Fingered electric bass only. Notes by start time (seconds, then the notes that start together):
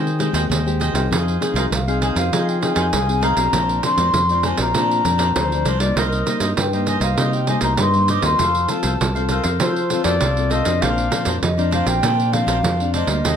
Already playing: D#3
0.33 D#2
0.49 D#2
0.93 C2
1.11 F2
1.54 C2
1.71 C2
2.15 F2
2.32 F3
2.76 F2
2.93 C2
3.36 B1
3.52 A#1
3.97 F2
4.13 F2
4.58 A#1
4.75 A#2
5.04 F2
5.36 D2
5.65 C2
5.96 C2
6.40 G2
6.57 G2
7.00 C2
7.17 C3
7.61 C2
7.78 G2
8.22 D#2
8.39 F2
8.83 C2
9.00 C2
9.44 F2
9.60 F3
10.04 F2
10.21 C2
10.66 F2
10.82 A#1
11.26 F2
11.42 F2
11.86 A#1
12.02 A#2
12.46 A#1
12.63 F2
13.07 D2
13.24 D#2